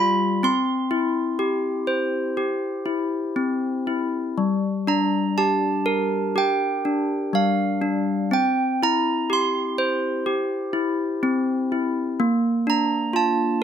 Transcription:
handbells
Already playing: G3 F4 G4 B5
0.43 C4 C6
0.91 E4
1.39 G4
1.87 C5
2.37 G4
2.86 E4
3.36 C4
3.87 E4
4.38 G3
4.87 D4 A#5
5.38 G4 A5
5.86 A#4
6.36 G4 G5
6.85 D4
7.33 G3 F5
7.82 D4
8.31 C4 G5
8.83 E4 A#5
9.30 G4 C6
9.78 C5
10.26 G4
10.73 E4
11.23 C4
11.72 E4
12.20 A#3
12.67 D4 A#5
13.13 F4 A5

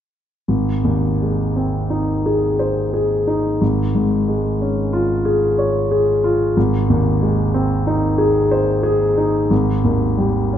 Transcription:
grand piano
0.48 G#1
0.84 D#2
1.22 G#3
1.56 C4
1.90 D#4
2.26 G#4
2.59 C5
2.94 G#4
3.27 D#4
3.61 G#1
3.95 G#2
4.28 G#3
4.61 C#4
4.93 F4
5.25 G#4
5.58 C#5
5.91 G#4
6.24 F4
6.57 G#1
6.90 D#2
7.22 G#3
7.54 C4
7.87 D#4
8.18 G#4
8.51 C5
8.83 G#4
9.17 D#4
9.50 G#1
9.84 D#2
10.17 G3
10.53 C#4

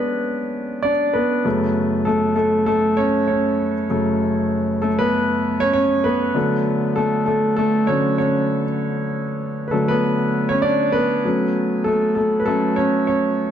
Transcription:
grand piano
Already playing: G#3 B3 C#4 D4 B4 C#5 D5
0.83 D4 D5
1.13 B3 B4
1.44 F#2 C#3 A3
2.05 A3 A4
2.36 A3 A4
2.66 A3 A4
2.97 C#4 C#5
3.28 C#4 C#5
3.90 F#2 C#3 A3
4.82 A3 A4
4.99 B3 B4
5.60 C#4 C#5
5.73 C#4 C#5
6.04 B3 B4
6.35 D3 F#3 A3
6.96 A3 A4
7.26 A3 A4
7.56 A3 A4
7.87 D3 F#3 A3 C#4 C#5
8.18 C#4 C#5
9.68 A4 B4
9.72 D3 F#3 A3
9.88 B3 B4
10.49 C#4 C#5
10.62 D4 D5
10.92 B3 B4
11.25 F#3 A3 C#4
11.84 A3 A4
12.15 A3 A4
12.40 B4
12.46 F#3 A3 C#4 A4
12.76 C#4 C#5
13.07 C#4 C#5

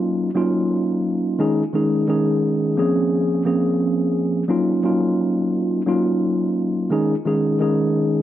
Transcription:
tine electric piano
Already playing: F#3 A#3 C#4 D#4 F4
0.34 F#3 A#3 C#4 D#4 F4
1.38 D#3 G#3 C#4 D#4 G#4
1.73 D#3 G#3 C#4 D#4 G#4
2.08 D#3 G#3 C#4 D#4 G#4
2.77 F3 A#3 C4 C#4 G#4
3.45 F3 A#3 C4 C#4 G#4
4.48 F#3 A#3 C#4 D#4 F4
4.83 F#3 A#3 C#4 D#4 F4
5.86 F#3 A#3 C#4 D#4 F4
6.90 D#3 G#3 C#4 D#4 G#4
7.25 D#3 G#3 C#4 D#4 G#4
7.59 D#3 G#3 C#4 D#4 G#4

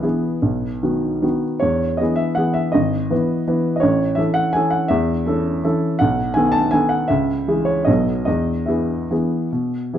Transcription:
upright piano
Already playing: B4
0.02 E3 B3 G#4
0.42 B1
0.83 D#3 B3 F#4
1.22 D#3 B3 F#4
1.60 E2 C#5
1.97 E3 B3 G#4 D#5
2.16 E5
2.35 E3 B3 G#4 F#5
2.54 E5
2.72 G#1 D#5
3.10 E3 B3 B4
3.47 E3 B3 B4
3.76 D#5
3.80 A1 C#5
4.15 E3 C#4 A4 E5
4.34 F#5
4.53 E3 C#4 A4 G#5
4.70 F#5
4.88 E2 E5
5.26 E3 C#4 A4
5.64 E3 C#4 A4
5.99 B1 F#5
6.34 D#3 B3 A4 G#5
6.52 A5
6.71 D#3 B3 A4 G#5
6.89 F#5
7.08 C#2 E5
7.48 E3 G#3 G#4
7.65 C#5
7.85 B1 F#3 B3 A4 D#5
8.25 E2 D#5
8.66 E3 B3 G#4 E5
9.11 E3 B3 G#4
9.52 B2
9.93 E3 B3 G#4

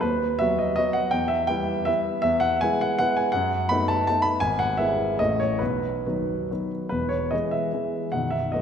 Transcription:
grand piano
0.01 D#2 B4
0.39 F#3 B3 F#4 E5
0.59 D#5
0.76 F#3 B3 F#4 D#5
0.93 F#5
1.11 E2 G5
1.28 E5
1.47 G3 B3 E4 G5
1.85 G3 B3 E4 E5
2.22 E2 E5
2.40 F#5
2.61 G#3 B3 E4 G#5
2.81 F#5
2.98 G#3 B3 E4 F#5
3.17 G#5
3.32 F#2 F#5
3.69 A3 B3 D#4 B5
3.88 A5
4.07 A3 B3 D#4 A5
4.22 B5
4.40 G#1 G#5
4.59 F#5
4.77 G#3 B3 E4 E5
5.19 A1 E3 A3 E4 D#5
5.40 C#5
5.59 B1 B4
6.06 D#3 F#3 B3
6.50 D#3 F#3 B3
6.89 E1 E2 B4
7.09 C#5
7.31 E3 G#3 B3 D#5
7.51 E5
7.73 E3 G#3 B3
8.12 B0 B1 F#5
8.30 E5
8.52 F#3 A3 B3 D#5

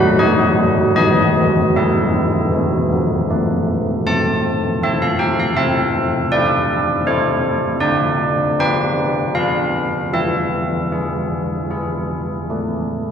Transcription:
church bells
Already playing: F#3 F#4 F#5
0.18 G#3 D#4 D#5
0.57 F#3
0.96 E3 D#4 D#5
1.36 G#3
1.76 A3 E4 E5
2.14 B3
2.52 G#3
2.92 F3
3.30 A3
4.07 C4 A4 A5
4.83 C4 A4 E5
5.02 F5
5.19 G5
5.40 F5
5.57 C4 E5
6.32 E4 A4 D5
7.07 E4 A4 C5
7.80 D4 D5
8.59 F4 B4 G5
9.35 F4 B4 F5
10.13 E3 E5
10.92 E4 G#4
11.71 E4 G#4
12.50 A3

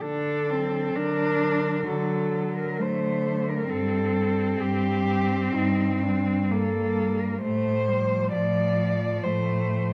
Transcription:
cello
0.01 D3 D4 A4
0.48 F#3 C4
0.95 D3 D4 A#4
1.41 F#3
1.86 D3 F#3 A4
2.33 F#3
2.56 A#4
2.79 D3 A3 C5
3.26 F#3
3.48 A#4
3.69 G2 G3 C4 A4
4.16 G3
4.61 G2 G4
5.08 G3
5.53 G2 D#4
6.02 G3 D4
6.51 G2 A#3 A4
6.97 G3
7.19 A#4
7.41 A2 A3 C5
7.88 F3 G3
8.31 A2 F3 D5
8.80 F3
9.23 A2 A3 C5
9.72 F3

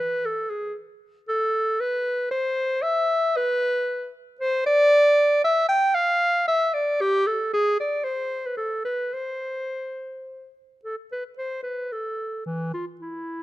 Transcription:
clarinet
Already playing: B4
0.26 A4
0.50 G#4
1.29 A4
1.80 B4
2.31 C5
2.82 E5
3.37 B4
4.40 C5
4.66 D5
5.44 E5
5.69 G5
5.95 F5
6.48 E5
6.74 D5
7.01 G4
7.27 A4
7.53 G#4
7.80 D5
8.04 C5
8.46 B4
8.57 A4
8.85 B4
9.14 C5
10.84 A4
11.12 B4
11.38 C5
11.63 B4
11.93 A4
12.46 E3
12.74 F4
13.01 E4

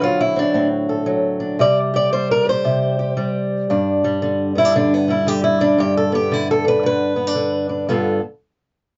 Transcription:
steel-string acoustic guitar
Already playing: D3 C4
0.02 F#3 F4
0.21 E4
0.36 C4 D4
0.54 A2 C4
0.89 A4
1.06 F#3
1.40 D4
1.59 C3 G3 G4 D5
1.94 G4 D5
2.13 G3 C5
2.31 A#4
2.45 G4 C5
2.65 C3 G4
2.99 G4
3.17 G3
3.70 G2 D4
4.04 G3
4.22 D3
4.55 B3 E4
4.65 D4
4.76 D3 D4
4.94 B3
5.08 G3 E4
5.26 D3 G4
5.44 E4
5.60 G3 D4
5.78 G2 G4
5.97 A4
6.12 B3 G4
6.32 D3 E4
6.51 A4
6.65 D4 B4
6.83 D3 B4
7.16 B3
7.27 D4
7.35 D3
7.69 D4
7.89 G2 D3 B3 F4 A4

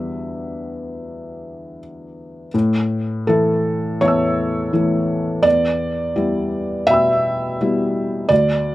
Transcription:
felt piano
Already playing: E2 G3 B3 D4 E5
2.54 A2
3.27 E3 A3 E4 A4
4.01 E2 C#5 E5 A5
4.08 E6
4.73 E3 A3 E4
5.43 E2 D5
6.16 G3 B3 E4
6.87 B2 E5 G5
6.91 B5 E6
7.61 G3 B3 E4
8.29 D2 D5

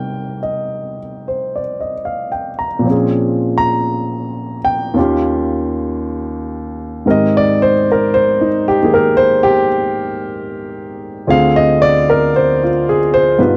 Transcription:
grand piano
Already playing: C3 G3 C4 D#4 A#4 G5
0.43 D#5
1.28 C5
1.56 D5
1.81 D#5
2.05 F5
2.32 G5
2.59 A#5
2.79 A#2 F3
2.85 C4 C#4
2.91 G#4
3.58 A#5
4.64 G5
4.94 D#2 D#3 C#4 F4
4.99 G4
7.06 G#2 D#3 C4 G4 A#4
7.11 D#5
7.37 D5
7.62 C5
7.92 A#4
8.14 C5
8.41 D#4
8.68 G4
8.82 D#3 A#3 D#4 G#4
8.94 A#4
9.17 C5
9.43 G4
11.27 D2 D3 C4 F4 G#4 F5
11.56 D#5
11.82 D5
12.10 A#4
12.36 C5
12.63 F4
12.89 G#4
13.14 C5
13.39 G2 G3 B3 D#4 F4 B4

